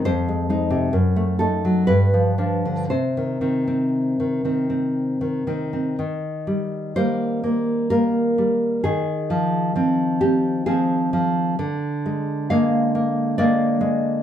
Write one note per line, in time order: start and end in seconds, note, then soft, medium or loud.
0.05 0.90 F2 soft
0.05 1.35 C5 medium
0.29 0.48 G#3 soft
0.50 0.89 G#3 soft
0.50 0.89 D#4 soft
0.70 0.93 C3 soft
0.93 1.85 F#2 soft
1.16 1.39 A3 soft
1.39 1.84 A3 soft
1.39 1.84 D#4 soft
1.39 1.86 A4 soft
1.65 1.88 F#3 soft
1.87 2.87 G2 soft
1.87 2.85 B4 medium
2.14 2.37 F3 soft
2.38 2.86 F3 soft
2.38 2.86 D4 soft
2.65 2.91 D3 soft
2.90 5.96 C3 soft
2.90 5.44 C5 soft
3.17 3.40 D#3 soft
3.41 4.19 D#3 soft
3.41 3.66 C4 soft
3.67 4.44 C4 soft
4.20 4.44 D#3 soft
4.45 5.20 D#3 soft
4.45 4.69 C4 soft
4.70 5.46 C4 soft
5.21 5.46 D#3 soft
5.47 5.95 D#3 soft
5.47 5.72 C4 soft
5.73 5.99 C4 soft
5.99 8.80 D#3 soft
6.47 6.95 G3 soft
6.96 7.89 G3 soft
6.96 7.42 A#3 soft
6.96 7.87 C5 medium
7.44 7.90 A#3 soft
7.90 8.37 G3 soft
7.90 8.80 A#3 soft
7.90 8.80 A#4 medium
8.38 8.84 G3 soft
8.84 11.55 D#3 soft
8.84 10.17 G#4 medium
9.30 9.74 F3 soft
9.76 10.65 F3 soft
9.76 10.20 C4 soft
10.21 10.66 C4 soft
10.21 10.65 G4 medium
10.66 11.12 F3 soft
10.66 11.54 C4 soft
10.66 11.54 G#4 medium
11.13 11.58 F3 soft
11.59 14.23 D3 soft
12.06 12.50 G#3 soft
12.50 13.38 G#3 soft
12.50 12.94 A#3 soft
12.50 13.35 F5 medium
12.95 13.38 A#3 soft
13.38 13.80 G#3 soft
13.38 14.22 A#3 soft
13.38 14.22 D5 medium
13.81 14.23 G#3 soft